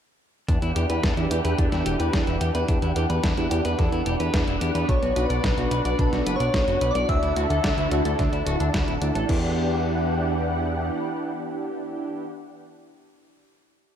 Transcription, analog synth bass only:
0.48 0.58 E2 loud
0.62 0.72 E2 medium
0.76 0.86 E2 loud
0.90 1.00 E2 medium
1.04 1.13 E2 loud
1.17 1.27 E2 medium
1.31 1.41 E2 medium
1.45 1.55 E2 medium
1.59 1.68 E2 loud
1.72 1.82 E2 medium
1.86 1.96 E1 medium
2.00 2.10 E2 medium
2.14 2.24 E2 medium
2.27 2.37 E1 medium
2.41 2.51 E2 medium
2.55 2.65 E2 medium
2.69 2.79 E2 loud
2.82 2.92 E2 medium
2.96 3.06 E2 medium
3.10 3.20 E2 medium
3.24 3.34 E2 loud
3.37 3.47 E2 medium
3.51 3.61 E2 medium
3.65 3.75 E2 medium
3.79 3.89 E2 loud
3.92 4.02 E2 medium
4.06 4.16 E1 medium
4.20 4.30 E2 medium
4.34 4.44 E2 medium
4.47 4.57 E1 medium
4.61 4.71 E2 medium
4.75 4.85 E2 medium
4.89 4.99 B1 loud
5.02 5.12 B1 medium
5.16 5.26 B1 medium
5.30 5.40 B1 medium
5.44 5.54 B1 loud
5.57 5.67 B1 medium
5.71 5.81 B1 medium
5.85 5.95 B1 medium
5.99 6.09 B1 loud
6.12 6.22 B1 medium
6.26 6.36 F#1 medium
6.40 6.50 B1 medium
6.54 6.64 B1 loud
6.67 6.78 F#1 medium
6.81 6.91 B1 medium
6.95 7.05 B1 medium
7.09 7.19 D2 loud
7.23 7.33 D2 medium
7.36 7.46 D2 medium
7.50 7.60 D2 medium
7.64 7.74 D2 loud
7.78 7.88 D2 medium
7.91 8.01 D2 loud
8.05 8.15 D2 medium
8.19 8.29 D2 loud
8.33 8.43 D2 medium
8.46 8.56 D1 medium
8.60 8.70 D2 medium
8.74 8.84 D2 loud
8.88 8.98 D1 medium
9.02 9.12 D2 medium
9.15 9.25 A1 medium
9.29 10.90 E2 loud

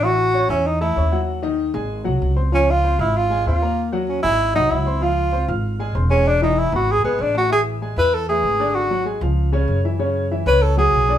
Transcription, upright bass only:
0.00 0.44 A1 loud
0.49 0.93 E2 loud
0.97 1.69 D#2 medium
1.74 2.03 G#1 loud
2.06 2.20 C2 medium
2.22 2.94 C#2 medium
2.99 3.43 G#1 loud
3.46 4.18 D#2 medium
4.24 4.53 G#1 loud
4.56 4.70 C2 medium
4.71 5.43 C#2 medium
5.48 5.92 G#1 loud
5.95 6.67 E1 loud
6.72 7.01 G#1 loud
7.03 7.18 G#1 medium
7.19 7.91 A1 loud
7.96 8.40 E2 loud
8.43 9.16 G#1 medium
9.21 9.65 C#2 loud
9.68 10.40 F#2 medium
10.46 10.90 C#2 loud
10.93 11.18 B1 medium

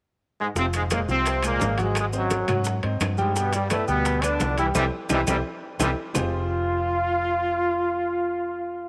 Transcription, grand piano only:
0.56 0.85 F3 medium
0.56 0.85 F4 medium
0.56 0.85 F5 medium
0.91 1.05 G#3 medium
0.91 1.06 G#4 medium
0.91 1.06 C5 medium
1.09 1.37 F3 medium
1.09 1.37 F4 medium
1.09 1.38 F5 medium
1.44 1.58 G#3 medium
1.44 1.58 G#4 medium
1.44 1.58 C5 medium
1.61 1.75 G#3 medium
1.61 1.75 G#4 medium
1.61 1.75 C5 medium
1.78 2.07 F#3 medium
1.78 2.07 F#4 medium
1.78 2.07 F#5 medium
2.13 2.42 C4 medium
2.13 2.42 C5 medium
2.13 2.42 D#5 medium
2.48 2.77 F#3 medium
2.48 2.77 F#4 medium
2.48 2.77 F#5 medium
2.83 3.12 C4 medium
2.83 3.12 C5 medium
2.83 3.12 D#5 medium
3.18 3.32 G3 medium
3.18 3.32 G4 medium
3.18 3.33 G5 medium
3.35 3.64 G3 medium
3.35 3.64 G4 medium
3.35 3.64 G5 medium
3.70 3.85 B3 medium
3.70 3.85 B4 medium
3.70 3.85 D5 medium
3.88 4.17 G3 medium
3.88 4.17 G4 medium
3.88 4.17 G5 medium
4.24 4.38 B3 medium
4.24 4.38 B4 medium
4.24 4.38 D5 medium
4.41 4.55 B3 medium
4.41 4.55 B4 medium
4.41 4.55 D5 medium
4.59 4.73 G3 medium
4.59 4.73 G4 medium
4.59 4.73 G5 medium
4.75 4.86 E4 loud
4.75 4.86 G4 loud
4.75 4.86 C5 loud
5.10 5.21 E4 medium
5.10 5.21 G4 loud
5.10 5.21 C5 loud
5.27 5.39 E4 loud
5.27 5.39 G4 medium
5.27 5.39 C5 medium
5.79 5.91 E4 loud
5.79 5.91 G4 medium
5.79 5.91 C5 medium
6.14 8.89 F3 medium
6.14 8.89 C4 medium
6.14 8.89 F4 medium
6.14 8.89 G4 medium
6.14 8.89 G#4 medium
6.14 8.89 C5 loud

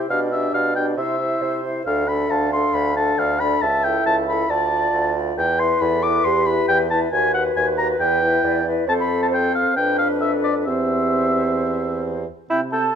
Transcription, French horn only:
0.10 0.32 D4 soft
0.32 0.75 D4 soft
0.76 0.97 D4 soft
0.97 1.19 E4 soft
1.20 1.63 E4 soft
1.64 1.86 E4 soft
1.86 2.07 D4 soft
2.08 2.51 D4 soft
2.53 2.95 D4 soft
2.96 3.39 D4 soft
3.41 3.62 D4 soft
3.85 4.27 E4 soft
4.28 4.49 E4 soft
4.50 4.71 F4 soft
4.72 5.15 F4 soft
5.15 5.37 F4 soft
5.59 6.02 E4 soft
6.04 6.46 E4 soft
6.47 6.90 E4 soft
6.91 7.11 E4 soft
7.12 7.33 F#4 soft
7.33 7.77 F#4 soft
7.78 7.99 F#4 soft
7.99 8.21 E4 soft
8.22 8.65 E4 soft
8.66 8.88 E4 soft
8.88 9.78 C4 soft
9.77 10.69 D4 medium
10.67 12.28 C4 soft
12.51 12.90 C3 soft

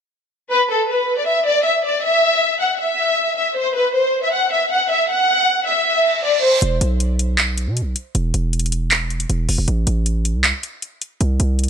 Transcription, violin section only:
0.51 0.66 B4 loud
0.70 0.85 A4 medium
0.89 1.16 B4 medium
1.18 1.25 D5 medium
1.27 1.43 E5 medium
1.46 1.62 D5 medium
1.65 1.81 E5 medium
1.84 2.00 D5 medium
2.03 2.57 E5 loud
2.61 2.76 F#5 medium
2.80 3.34 E5 medium
3.37 3.53 E5 medium
3.56 3.72 C5 medium
3.76 3.91 B4 medium
3.95 4.21 C5 medium
4.23 4.31 E5 medium
4.33 4.48 F#5 medium
4.52 4.67 E5 medium
4.71 4.86 F#5 medium
4.90 5.06 E5 medium
5.09 5.63 F#5 loud
5.66 6.20 E5 medium
6.24 6.39 D5 medium
6.43 6.58 C5 medium

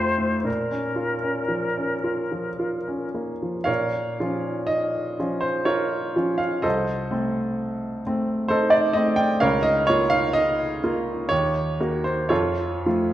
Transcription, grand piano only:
0.00 0.43 F2 soft
0.00 0.18 A3 soft
0.00 0.36 F4 soft
0.18 0.46 A3 soft
0.44 3.63 A#2 soft
0.71 1.14 C#4 soft
0.96 1.40 F4 soft
1.22 1.67 C#4 soft
1.48 1.93 F3 soft
1.77 2.21 C#4 soft
2.04 2.48 F4 soft
2.32 2.76 F3 soft
2.59 3.03 F4 soft
2.88 3.32 C#4 soft
3.14 3.58 A#3 soft
3.42 3.68 F3 soft
3.64 4.17 A#2 soft
3.64 4.64 A#4 soft
3.64 4.64 C#5 soft
3.64 4.67 F5 medium
4.20 5.16 F3 soft
4.20 5.16 C#4 soft
4.20 5.17 F4 soft
4.67 5.43 D#5 medium
5.20 6.13 F3 soft
5.20 6.13 C#4 soft
5.20 5.64 F4 soft
5.41 5.67 C5 medium
5.65 6.15 F4 medium
5.65 6.36 A#4 soft
5.65 6.39 C#5 medium
6.16 6.60 F3 soft
6.16 6.61 C#4 soft
6.16 6.61 F4 soft
6.38 6.63 F5 medium
6.62 7.11 C2 soft
6.62 8.47 A4 medium
6.62 8.47 C5 medium
6.62 8.51 D#5 medium
7.11 8.01 A3 soft
7.11 8.02 C4 soft
8.07 8.93 A3 soft
8.07 8.93 C4 soft
8.48 8.72 D#4 medium
8.48 8.72 A4 medium
8.48 8.73 C5 medium
8.70 8.95 D5 medium
8.93 9.38 A3 soft
8.93 9.38 C4 soft
8.93 9.18 D#5 medium
9.16 9.41 G5 medium
9.40 9.88 C#2 medium
9.40 9.64 A#4 medium
9.40 9.63 C#5 medium
9.40 9.65 F5 medium
9.63 9.88 D#5 medium
9.87 10.79 A#3 soft
9.87 10.79 F4 soft
9.87 10.11 C#5 medium
10.10 10.35 F5 medium
10.33 11.30 D#5 medium
10.84 11.27 A#3 soft
10.84 11.27 F4 soft
11.29 11.78 D#2 medium
11.29 12.04 C#5 medium
11.80 12.27 A#3 soft
11.80 12.27 F#4 soft
12.04 12.30 C5 medium
12.29 12.82 F2 soft
12.29 12.85 F4 medium
12.29 13.13 A4 medium
12.29 13.13 C#5 medium
12.86 13.13 F3 soft
12.86 13.13 A3 soft
12.86 13.13 F4 soft

